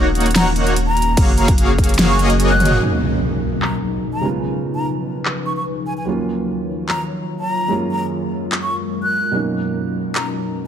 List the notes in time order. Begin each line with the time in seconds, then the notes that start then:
Already playing: D#1 D#3 A#3 C#4 D#4 F#4 C#5 F#5
0.15 closed hi-hat
0.20 closed hi-hat
0.26 closed hi-hat
0.31 closed hi-hat
0.35 A#5, snare, closed hi-hat, crash
0.56 closed hi-hat
0.67 closed hi-hat
0.76 closed hi-hat
0.87 A#5
0.97 closed hi-hat
1.02 closed hi-hat
1.17 F#1 F#3 A#3 F#4 G#4 A#4 C#5 F5 G#5, kick, closed hi-hat, crash
1.38 A#5, closed hi-hat
1.48 kick, closed hi-hat
1.58 closed hi-hat
1.78 kick, closed hi-hat
1.84 closed hi-hat
1.89 closed hi-hat
1.94 closed hi-hat
1.99 snare, closed hi-hat, crash
2.09 C#6
2.19 A#3 F#4 G#4 C#5 D#5, closed hi-hat
2.30 closed hi-hat
2.40 closed hi-hat
2.50 F#6, high tom
2.60 closed hi-hat, mid tom
2.65 closed hi-hat
2.71 mid tom
2.78 B2 F#3 A#3 C#4 D#4 A#4, impact
2.82 D#4
3.62 A#5, clap
4.14 A#5
4.21 C#2 C#3 F3 G#3 B3 D#4 B4
4.25 F4
4.75 A#5
5.25 clap
5.46 C#6
5.56 C#6
5.86 G#5
5.97 G#5
6.05 D#2 D#3 F#3 A#3 C#4 F4 C#5
6.88 A#5, clap
7.40 A#5
7.68 F#2 G#3 A#3 C#4 A#4
7.72 F4
7.91 A#5
8.52 clap
8.63 C#6
9.03 F#6
9.31 B2 F#3 A#3 C#4 D#4
9.35 D#4
10.15 A#5, clap